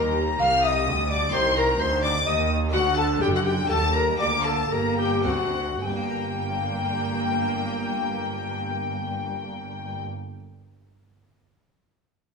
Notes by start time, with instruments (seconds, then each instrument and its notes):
Already playing: harpsichord D#2 D#4 G4, cello section D#2, double bass section D#2, viola section G3, recorder A#4, violin section A#5
0.39 cello section C2, double bass section C2, harpsichord C2, recorder F5, violin section F6
0.63 recorder D#5 E5, violin section D#6
0.88 cello section D2, double bass section D2, harpsichord D2
1.10 recorder D5, violin section D6
1.29 viola section D#3, harpsichord C4 D#4 G4, recorder C5, violin section C6
1.34 harpsichord C2, cello section C2, double bass section C2, violin section C6
1.56 recorder A#4, violin section A#5
1.79 harpsichord D2, double bass section D2, cello section D2, viola section D#3, recorder C5, violin section C6
2.03 recorder D5, violin section D6
2.26 cello section D#2, double bass section D#2, harpsichord D#2, viola section D#3, recorder D#5, violin section D#6
2.69 harpsichord A3 D4 F#4
2.73 harpsichord D2, cello section D2, double bass section D2, viola section D3, recorder F#4, violin section F#5
2.97 recorder A4, violin section A5
3.21 double bass section F#1, cello section F#2, harpsichord F#2, recorder G4, violin section G5
3.33 recorder F#4, violin section F#5
3.45 recorder G4, violin section G5
3.66 harpsichord D#2 A#3 G4, cello section D#2, viola section G3, recorder A4
3.70 double bass section D#2, violin section A5
3.94 recorder A#4, violin section A#5
4.16 harpsichord D2 A#3 G4, cello section D2, viola section A#3, recorder D5, violin section D6
4.20 double bass section D2, violin section D6
4.45 recorder A4, violin section A5
4.71 double bass section G1, cello section G2, harpsichord G2, viola section A#3, recorder A#4, violin section A#5
4.98 recorder G4, violin section G5
5.20 harpsichord A3 C4 D4
5.25 double bass section D2, harpsichord D2, cello section D2, viola section C4, recorder F#4, violin section F#5
5.81 double bass section G1, cello section G2, harpsichord G2, viola section A#3, violin section G5, recorder G#5
5.85 harpsichord G3, recorder G5
5.96 harpsichord A#3
6.03 harpsichord D4
6.10 harpsichord A#4